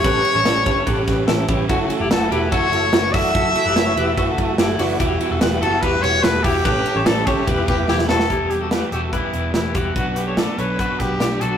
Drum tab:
RD |x-x-x-x-x-x-x-x-|x-x-x-x-x-x-x-x-|x-x-x-x-x-x-x-x-|x-x-x-x-x-x-x-x-|
HH |p---------------|--------------o-|p-------------o-|p-------------o-|
SD |----o-----o-o---|----o-----o-o---|----o-------o---|----o-----o-o---|
BD |o-----o-o-o---o-|o-------o-----o-|o-------o-o-----|o-------o-----o-|

RD |x-x-x-x-x-x-----|----------------|----------------|
HH |p---------------|x-x-x-x-x-x-x-x-|x-x-x-x-x-x-x-x-|
SD |----o-------oooo|----o-------o---|----o-----o-o---|
BD |o-----o-o-o-----|o-------o-----o-|o-------o-o-----|